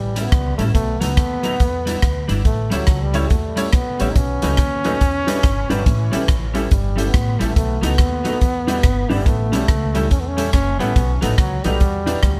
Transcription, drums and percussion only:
0.16 closed hi-hat loud
0.32 kick loud
0.32 cross-stick loud
0.32 closed hi-hat medium
0.59 closed hi-hat medium
0.75 kick loud
0.75 closed hi-hat medium
1.02 closed hi-hat loud
1.17 kick loud
1.17 cross-stick loud
1.17 closed hi-hat medium
1.43 closed hi-hat medium
1.60 kick loud
1.60 closed hi-hat medium
1.87 closed hi-hat loud
2.02 kick loud
2.02 cross-stick loud
2.02 closed hi-hat medium
2.29 closed hi-hat medium
2.45 kick loud
2.45 closed hi-hat medium
2.72 closed hi-hat loud
2.87 kick loud
2.87 cross-stick loud
2.87 closed hi-hat medium
3.14 closed hi-hat medium
3.30 kick loud
3.30 closed hi-hat medium
3.57 closed hi-hat loud
3.73 kick loud
3.73 cross-stick loud
3.73 closed hi-hat medium
4.00 closed hi-hat medium
4.15 kick loud
4.15 closed hi-hat medium
4.42 closed hi-hat loud
4.57 kick loud
4.57 cross-stick loud
4.57 closed hi-hat medium
4.84 closed hi-hat medium
5.01 kick loud
5.01 closed hi-hat medium
5.28 closed hi-hat loud
5.43 kick loud
5.43 cross-stick loud
5.43 closed hi-hat medium
5.70 closed hi-hat medium
5.86 kick loud
5.86 closed hi-hat medium
6.13 closed hi-hat loud
6.28 kick loud
6.28 cross-stick loud
6.28 closed hi-hat medium
6.55 closed hi-hat medium
6.71 kick loud
6.71 closed hi-hat medium
6.98 closed hi-hat loud
7.14 kick loud
7.14 cross-stick loud
7.14 closed hi-hat medium
7.41 closed hi-hat medium
7.56 kick loud
7.56 closed hi-hat medium
7.83 closed hi-hat loud
7.98 kick loud
7.98 cross-stick loud
7.98 closed hi-hat medium
8.25 closed hi-hat medium
8.41 kick medium
8.41 closed hi-hat medium
8.68 closed hi-hat medium
8.83 kick loud
8.83 cross-stick loud
8.83 closed hi-hat medium
9.10 open hi-hat medium
9.26 kick loud
9.26 closed hi-hat medium
9.53 closed hi-hat medium
9.68 kick loud
9.68 cross-stick loud
9.68 closed hi-hat medium
9.95 closed hi-hat medium
10.11 kick loud
10.11 closed hi-hat medium
10.38 closed hi-hat loud
10.53 kick loud
10.53 cross-stick loud
10.53 closed hi-hat medium
10.80 closed hi-hat medium
10.96 kick loud
10.96 closed hi-hat medium
11.22 closed hi-hat loud
11.38 kick loud
11.38 cross-stick loud
11.38 closed hi-hat medium
11.64 closed hi-hat medium
11.80 kick loud
11.80 closed hi-hat medium
12.07 closed hi-hat loud
12.23 kick loud
12.23 cross-stick loud
12.23 closed hi-hat medium

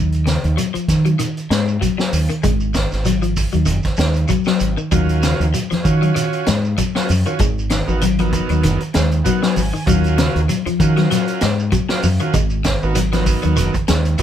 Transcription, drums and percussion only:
0.12 closed hi-hat soft
0.12 shekere soft
0.26 snare medium
0.26 closed hi-hat soft
0.26 shekere medium
0.44 closed hi-hat soft
0.44 shekere soft
0.58 closed hi-hat medium
0.58 shekere medium
0.75 closed hi-hat soft
0.75 shekere soft
0.88 kick medium
0.88 snare soft
0.88 closed hi-hat soft
0.88 shekere medium
1.05 closed hi-hat soft
1.05 shekere soft
1.19 closed hi-hat medium
1.19 shekere medium
1.37 closed hi-hat soft
1.37 shekere soft
1.51 snare medium
1.51 closed hi-hat medium
1.51 shekere medium
1.68 shekere soft
1.82 kick medium
1.82 closed hi-hat medium
1.82 shekere medium
1.99 snare medium
1.99 shekere soft
2.13 open hi-hat medium
2.13 shekere medium
2.30 closed hi-hat soft
2.30 shekere soft
2.43 kick medium
2.43 closed hi-hat medium
2.43 shekere medium
2.60 shekere soft
2.74 kick medium
2.74 snare medium
2.74 closed hi-hat soft
2.74 shekere medium
2.92 snare soft
2.92 shekere soft
3.05 closed hi-hat medium
3.05 shekere medium
3.22 closed hi-hat soft
3.22 shekere soft
3.36 kick medium
3.36 open hi-hat medium
3.36 shekere medium
3.53 closed hi-hat soft
3.53 shekere soft
3.65 closed hi-hat medium
3.65 shekere medium
3.83 kick medium
3.83 snare soft
3.83 closed hi-hat soft
3.83 shekere soft
3.97 snare medium
3.97 closed hi-hat soft
3.97 shekere medium
4.14 closed hi-hat soft
4.14 shekere soft
4.28 kick medium
4.28 closed hi-hat medium
4.28 shekere medium
4.45 snare medium
4.45 shekere soft
4.60 closed hi-hat soft
4.60 shekere medium
4.78 shekere soft
4.92 kick medium
4.92 closed hi-hat medium
4.92 shekere medium
5.09 closed hi-hat soft
5.09 shekere soft
5.23 snare medium
5.23 closed hi-hat soft
5.23 high conga medium
5.23 shekere medium
5.41 closed hi-hat soft
5.41 high conga medium
5.41 shekere soft
5.54 closed hi-hat medium
5.54 high conga soft
5.54 shekere medium
5.71 snare soft
5.71 closed hi-hat soft
5.71 high conga medium
5.71 shekere soft
5.85 kick medium
5.85 closed hi-hat soft
5.85 shekere medium
6.03 closed hi-hat soft
6.03 shekere soft
6.16 closed hi-hat medium
6.16 high conga soft
6.16 shekere medium
6.33 closed hi-hat soft
6.33 shekere soft
6.46 snare medium
6.46 closed hi-hat medium
6.46 high conga medium
6.46 shekere medium
6.65 shekere soft
6.77 kick medium
6.77 closed hi-hat medium
6.77 shekere medium
6.95 snare medium
6.95 shekere soft
7.09 open hi-hat medium
7.09 high conga medium
7.09 shekere medium
7.26 closed hi-hat soft
7.26 shekere soft
7.39 kick medium
7.39 closed hi-hat medium
7.39 high conga soft
7.39 shekere medium
7.59 shekere soft
7.70 snare medium
7.70 closed hi-hat medium
7.70 high conga medium
7.70 shekere medium
7.88 high conga medium
7.88 shekere soft
8.01 closed hi-hat medium
8.01 high conga soft
8.01 shekere medium
8.19 closed hi-hat soft
8.19 high conga medium
8.19 shekere soft
8.33 kick medium
8.33 closed hi-hat soft
8.33 shekere medium
8.49 closed hi-hat soft
8.49 shekere soft
8.63 closed hi-hat medium
8.63 high conga soft
8.63 shekere medium
8.80 closed hi-hat soft
8.80 shekere soft
8.94 snare medium
8.94 closed hi-hat medium
8.94 high conga medium
8.94 shekere medium
9.11 closed hi-hat soft
9.11 shekere soft
9.26 kick medium
9.26 closed hi-hat medium
9.26 shekere medium
9.43 snare medium
9.43 shekere soft
9.56 open hi-hat soft
9.56 high conga medium
9.56 shekere medium
9.75 shekere soft
9.87 kick medium
9.87 closed hi-hat medium
9.87 shekere medium
10.04 closed hi-hat soft
10.04 shekere soft
10.18 snare medium
10.18 closed hi-hat soft
10.18 high conga medium
10.18 shekere medium
10.36 closed hi-hat soft
10.36 shekere soft
10.49 closed hi-hat medium
10.49 high conga soft
10.49 shekere medium
10.66 closed hi-hat soft
10.66 high conga medium
10.66 shekere soft
10.80 kick medium
10.80 closed hi-hat soft
10.80 shekere medium
10.97 snare soft
10.97 closed hi-hat soft
10.97 shekere soft
11.11 snare soft
11.11 closed hi-hat medium
11.11 shekere medium
11.28 closed hi-hat soft
11.28 shekere soft
11.41 snare medium
11.41 closed hi-hat medium
11.41 high conga medium
11.41 shekere medium
11.60 shekere soft
11.72 kick medium
11.72 closed hi-hat medium
11.72 shekere medium
11.89 snare medium
11.89 shekere soft
12.02 open hi-hat medium
12.02 high conga medium
12.02 shekere medium
12.20 closed hi-hat soft
12.20 shekere soft
12.33 kick medium
12.33 closed hi-hat medium
12.33 shekere medium
12.50 shekere soft
12.64 kick medium
12.64 snare medium
12.64 closed hi-hat soft
12.64 high conga medium
12.64 shekere medium
12.82 shekere soft
12.95 closed hi-hat medium
12.95 high conga soft
12.95 shekere medium
13.13 snare soft
13.13 closed hi-hat soft
13.13 high conga medium
13.13 shekere soft
13.26 kick medium
13.26 open hi-hat medium
13.26 shekere medium
13.43 closed hi-hat soft
13.43 shekere soft
13.57 closed hi-hat medium
13.57 shekere medium
13.74 kick medium
13.74 closed hi-hat soft
13.74 shekere soft
13.88 snare medium
13.88 closed hi-hat medium
13.88 high conga medium
13.88 shekere medium
14.05 closed hi-hat soft
14.05 shekere soft
14.18 kick medium
14.18 closed hi-hat medium
14.18 shekere medium

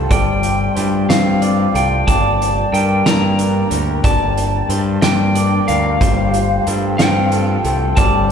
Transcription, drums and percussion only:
0.11 kick medium
0.11 closed hi-hat medium
0.43 closed hi-hat soft
0.77 closed hi-hat soft
1.10 snare medium
1.10 closed hi-hat medium
1.42 closed hi-hat soft
1.75 closed hi-hat soft
2.08 kick medium
2.08 closed hi-hat medium
2.42 closed hi-hat medium
2.74 closed hi-hat soft
3.06 snare medium
3.06 closed hi-hat medium
3.39 closed hi-hat medium
3.71 closed hi-hat medium
4.04 kick medium
4.04 closed hi-hat medium
4.37 closed hi-hat medium
4.70 closed hi-hat medium
5.02 snare medium
5.02 closed hi-hat medium
5.35 closed hi-hat medium
5.68 closed hi-hat soft
6.01 kick medium
6.01 closed hi-hat medium
6.34 closed hi-hat medium
6.67 closed hi-hat soft
6.99 snare medium
6.99 closed hi-hat medium
7.32 closed hi-hat medium
7.64 closed hi-hat soft
7.97 kick medium
7.97 closed hi-hat medium

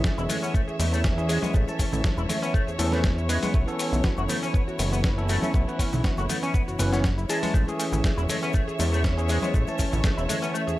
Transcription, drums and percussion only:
0.04 kick loud
0.04 snare loud
0.04 high conga medium
0.04 cabasa soft
0.04 shaker soft
0.18 cabasa soft
0.18 shaker soft
0.29 open hi-hat loud
0.29 high conga medium
0.29 low conga medium
0.29 cabasa medium
0.29 shaker medium
0.43 cabasa soft
0.43 shaker soft
0.54 kick loud
0.54 cabasa medium
0.54 shaker soft
0.68 shaker soft
0.80 open hi-hat loud
0.80 cabasa medium
0.80 shaker medium
0.93 cabasa soft
0.93 shaker soft
1.04 kick loud
1.04 snare loud
1.04 cabasa soft
1.04 shaker soft
1.18 shaker soft
1.29 open hi-hat loud
1.29 cabasa medium
1.29 shaker medium
1.43 high conga loud
1.43 cabasa soft
1.43 shaker soft
1.54 kick loud
1.54 cabasa medium
1.54 shaker soft
1.68 cabasa soft
1.68 shaker soft
1.79 kick medium
1.79 open hi-hat loud
1.79 cabasa medium
1.79 shaker medium
1.92 low conga medium
1.92 cabasa soft
1.92 shaker soft
2.04 kick loud
2.04 snare loud
2.04 high conga medium
2.04 cabasa soft
2.04 shaker soft
2.18 cabasa soft
2.18 shaker soft
2.29 open hi-hat loud
2.29 high conga medium
2.29 low conga medium
2.29 cabasa medium
2.29 shaker medium
2.43 cabasa soft
2.43 shaker soft
2.54 kick loud
2.54 cabasa medium
2.54 shaker soft
2.68 shaker soft
2.79 open hi-hat loud
2.79 cabasa medium
2.79 shaker medium
2.92 snare soft
2.92 cabasa soft
2.92 shaker soft
3.04 kick loud
3.04 snare loud
3.04 cabasa soft
3.04 shaker soft
3.18 shaker soft
3.29 open hi-hat loud
3.29 cabasa medium
3.29 shaker medium
3.43 open hi-hat medium
3.43 high conga loud
3.43 cabasa soft
3.43 shaker soft
3.54 kick loud
3.54 cabasa soft
3.54 shaker soft
3.68 shaker soft
3.79 open hi-hat loud
3.79 cabasa loud
3.79 shaker medium
3.93 low conga medium
3.93 cabasa soft
3.93 shaker soft
4.03 kick loud
4.03 snare loud
4.03 high conga medium
4.03 cabasa medium
4.03 shaker soft
4.17 cabasa soft
4.17 shaker soft
4.28 open hi-hat loud
4.28 high conga medium
4.28 low conga medium
4.28 cabasa loud
4.28 shaker medium
4.42 cabasa soft
4.42 shaker soft
4.54 kick loud
4.54 cabasa soft
4.54 shaker soft
4.68 shaker soft
4.79 open hi-hat loud
4.79 cabasa medium
4.79 shaker medium
4.93 cabasa soft
4.93 shaker soft
5.04 kick loud
5.04 snare loud
5.04 cabasa soft
5.04 shaker soft
5.18 shaker soft
5.28 open hi-hat loud
5.28 cabasa medium
5.28 shaker medium
5.42 high conga medium
5.42 cabasa soft
5.42 shaker soft
5.54 kick loud
5.54 cabasa medium
5.54 shaker soft
5.68 shaker soft
5.79 kick medium
5.79 open hi-hat loud
5.79 cabasa medium
5.79 shaker medium
5.93 low conga medium
5.93 cabasa soft
5.93 shaker soft
6.04 kick loud
6.04 snare loud
6.04 high conga medium
6.04 cabasa medium
6.04 shaker soft
6.17 cabasa soft
6.17 shaker soft
6.29 open hi-hat loud
6.29 high conga medium
6.29 low conga medium
6.29 cabasa loud
6.29 shaker medium
6.42 cabasa soft
6.42 shaker soft
6.54 kick loud
6.54 cabasa medium
6.54 shaker soft
6.68 shaker soft
6.79 open hi-hat loud
6.79 cabasa medium
6.79 shaker medium
6.93 snare soft
6.93 cabasa soft
6.93 shaker soft
7.04 kick loud
7.04 snare loud
7.04 cabasa medium
7.04 shaker soft
7.18 shaker soft
7.29 open hi-hat loud
7.29 cabasa medium
7.29 shaker medium
7.43 open hi-hat medium
7.43 high conga medium
7.43 cabasa soft
7.43 shaker soft
7.54 kick loud
7.54 cabasa medium
7.54 shaker soft
7.68 shaker soft
7.80 open hi-hat loud
7.80 cabasa loud
7.80 shaker medium
7.92 low conga loud
7.92 cabasa soft
7.92 shaker soft
8.04 kick loud
8.04 snare loud
8.04 high conga medium
8.04 cabasa medium
8.04 shaker soft
8.18 cabasa soft
8.18 shaker soft
8.29 open hi-hat loud
8.29 high conga medium
8.29 low conga medium
8.29 cabasa loud
8.29 shaker medium
8.42 cabasa soft
8.42 shaker soft
8.53 kick loud
8.53 cabasa medium
8.53 shaker soft
8.69 shaker soft
8.79 open hi-hat loud
8.79 cabasa loud
8.79 shaker medium
8.92 cabasa soft
8.92 shaker soft
9.04 kick loud
9.04 snare loud
9.04 cabasa medium
9.04 shaker soft
9.19 shaker soft
9.29 open hi-hat loud
9.29 cabasa medium
9.29 shaker medium
9.42 high conga loud
9.42 cabasa soft
9.42 shaker soft
9.54 kick loud
9.54 cabasa medium
9.54 shaker soft
9.67 cabasa soft
9.67 shaker soft
9.78 kick medium
9.78 open hi-hat loud
9.78 cabasa loud
9.78 shaker medium
9.92 low conga loud
9.92 cabasa soft
9.92 shaker soft
10.03 kick loud
10.03 snare loud
10.03 high conga medium
10.03 cabasa medium
10.03 shaker soft
10.18 cabasa soft
10.18 shaker soft
10.29 open hi-hat loud
10.29 high conga medium
10.29 low conga medium
10.29 cabasa loud
10.29 shaker medium
10.42 cabasa soft
10.42 shaker soft
10.55 cabasa medium
10.55 shaker soft
10.68 cabasa soft
10.68 shaker soft

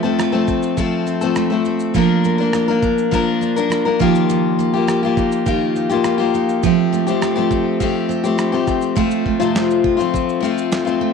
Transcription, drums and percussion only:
0.20 cross-stick loud
0.20 shaker medium
0.48 kick medium
0.48 shaker soft
0.63 shaker soft
0.77 kick medium
0.77 shaker medium
1.07 shaker soft
1.21 shaker medium
1.36 cross-stick medium
1.36 shaker medium
1.65 shaker soft
1.80 shaker soft
1.94 kick loud
1.94 shaker medium
2.24 shaker soft
2.53 cross-stick loud
2.53 shaker medium
2.83 kick medium
2.83 shaker soft
2.98 shaker medium
3.12 kick medium
3.12 shaker medium
3.42 shaker soft
3.57 shaker medium
3.71 cross-stick loud
3.71 shaker medium
4.00 kick loud
4.00 shaker soft
4.15 shaker soft
4.30 shaker medium
4.60 shaker soft
4.88 cross-stick loud
4.88 shaker medium
5.17 kick medium
5.17 shaker soft
5.32 shaker medium
5.46 kick medium
5.46 shaker medium
5.76 shaker soft
5.90 shaker medium
6.04 cross-stick loud
6.04 shaker medium
6.34 shaker soft
6.49 shaker soft
6.63 kick loud
6.63 shaker medium
6.93 shaker soft
7.07 shaker medium
7.22 cross-stick loud
7.22 shaker medium
7.51 kick medium
7.51 shaker soft
7.80 kick medium
7.80 shaker medium
8.10 shaker soft
8.24 shaker medium
8.38 cross-stick loud
8.38 shaker medium
8.67 kick medium
8.67 cross-stick soft
8.67 shaker soft
8.82 shaker soft
8.96 kick loud
8.96 shaker medium
9.11 shaker medium
9.26 kick medium
9.41 shaker medium
9.56 snare loud
9.56 shaker medium
9.70 shaker soft
9.84 kick loud
10.00 shaker soft
10.14 kick medium
10.14 shaker medium
10.29 shaker soft
10.44 shaker soft
10.58 shaker medium
10.72 snare loud
10.72 shaker medium
10.87 shaker medium

